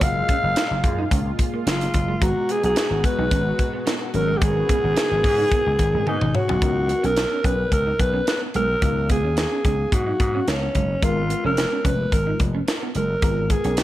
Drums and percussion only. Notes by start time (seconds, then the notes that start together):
0.01 kick, closed hi-hat
0.29 kick, closed hi-hat
0.56 snare, closed hi-hat
0.84 kick, closed hi-hat
1.11 kick, closed hi-hat
1.39 kick, closed hi-hat
1.67 snare, closed hi-hat
1.81 closed hi-hat
1.94 kick, closed hi-hat
2.22 kick, closed hi-hat
2.49 closed hi-hat
2.64 closed hi-hat
2.76 snare, closed hi-hat
3.04 kick, closed hi-hat
3.31 kick, closed hi-hat
3.59 kick, closed hi-hat
3.87 snare, closed hi-hat
4.14 closed hi-hat
4.42 kick, closed hi-hat
4.69 kick, closed hi-hat
4.97 snare, closed hi-hat
5.24 kick, open hi-hat
5.52 kick, closed hi-hat
5.79 kick, closed hi-hat
6.07 high tom
6.21 mid tom
6.35 mid tom
6.49 floor tom
6.62 kick, closed hi-hat
6.89 closed hi-hat
7.04 closed hi-hat
7.17 snare, closed hi-hat
7.44 kick, closed hi-hat
7.72 kick, closed hi-hat
7.99 kick, closed hi-hat
8.27 snare, closed hi-hat
8.54 closed hi-hat
8.82 kick, closed hi-hat
9.09 kick, closed hi-hat
9.37 snare, closed hi-hat
9.65 kick, closed hi-hat
9.92 kick, closed hi-hat
10.20 kick, closed hi-hat
10.48 snare, closed hi-hat
10.75 kick, closed hi-hat
11.03 kick, closed hi-hat
11.30 closed hi-hat
11.57 snare, closed hi-hat
11.85 kick, closed hi-hat
12.12 kick, closed hi-hat
12.40 kick, closed hi-hat
12.68 snare, closed hi-hat
12.95 closed hi-hat
13.22 kick, closed hi-hat
13.50 kick, closed hi-hat
13.64 closed hi-hat
13.77 snare, closed hi-hat